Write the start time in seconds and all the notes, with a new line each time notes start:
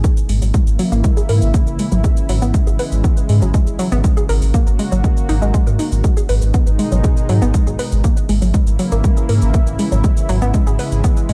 0.04 C#3 E3 A#3 E4, kick, shaker
0.17 shaker
0.29 G#1 G#3, open hi-hat, shaker
0.42 G#1 F#3, open hi-hat, shaker
0.54 G#3, kick, shaker
0.67 G#1, shaker
0.79 F#3, open hi-hat, shaker
0.92 G#1 A#3, shaker
1.04 G#3, kick, shaker
1.17 G#4, shaker
1.29 G#2 A#4, open hi-hat
1.42 G#1, shaker
1.54 A#3, kick, shaker
1.67 G#1, shaker
1.79 G#3, open hi-hat, shaker
1.92 G#1 F#3, shaker
2.04 G#3, kick, shaker
2.17 shaker
2.29 G#1 F#3, open hi-hat, shaker
2.42 G#1 B3, shaker
2.54 G#3, kick, shaker
2.67 G#1 G#4, shaker
2.79 B4, open hi-hat, shaker
2.92 G#1, shaker
3.04 B3, kick, shaker
3.17 shaker
3.29 G#2 G#3, open hi-hat
3.42 G#1 F#3, shaker
3.54 G#3, kick, shaker
3.67 G#1, shaker
3.79 F#3, open hi-hat, shaker
3.92 G#1 B3, shaker
4.04 F#3 G#3 A#3 F#4, kick, shaker
4.17 G#4, shaker
4.29 G#1 A#4, open hi-hat, shaker
4.42 G#1, open hi-hat, shaker
4.54 A#3, kick, shaker
4.67 G#1, shaker
4.79 G#3, open hi-hat, shaker
4.92 G#1 F#3, shaker
5.04 G#3, kick, shaker
5.17 shaker
5.29 G#1 D#4, open hi-hat, shaker
5.42 G#1 G#3, shaker
5.54 G#3, kick, shaker
5.67 G#2 A#4, shaker
5.79 D#4, open hi-hat, shaker
5.92 G#1, shaker
6.04 B2 D#3 G#3 D#4, kick, shaker
6.17 G#4, shaker
6.29 G#1 B4, open hi-hat, shaker
6.42 G#1, shaker
6.54 B3, kick, shaker
6.67 G#1, shaker
6.79 G#3, open hi-hat, shaker
6.92 G#1 F#3, shaker
7.04 G#3, kick, shaker
7.17 shaker
7.29 G#2 F#3, open hi-hat
7.42 G#1 B3, shaker
7.54 G#3, kick, shaker
7.67 G#1 G#4, shaker
7.79 B4, open hi-hat, shaker
7.92 G#1, shaker
8.04 C#3 E3 A#3 E4, kick, shaker
8.17 shaker
8.29 G#1 G#3, open hi-hat, shaker
8.42 G#1 F#3, open hi-hat, shaker
8.54 G#3, kick, shaker
8.67 G#1, shaker
8.79 F#3, open hi-hat, shaker
8.92 G#1 A#3, shaker
9.04 G#3, kick, shaker
9.17 G#4, shaker
9.29 G#2 A#4, open hi-hat
9.42 G#1, shaker
9.54 A#3, kick, shaker
9.67 G#1, shaker
9.79 G#3, open hi-hat, shaker
9.92 G#1 F#3, shaker
10.04 G#3, kick, shaker
10.17 shaker
10.29 G#1 F#3, open hi-hat, shaker
10.42 G#1 B3, shaker
10.54 G#3, kick, shaker
10.67 G#1 G#4, shaker
10.79 B4, open hi-hat, shaker
10.92 G#1, shaker
11.04 B3, kick, shaker
11.17 shaker
11.29 G#2 G#3, open hi-hat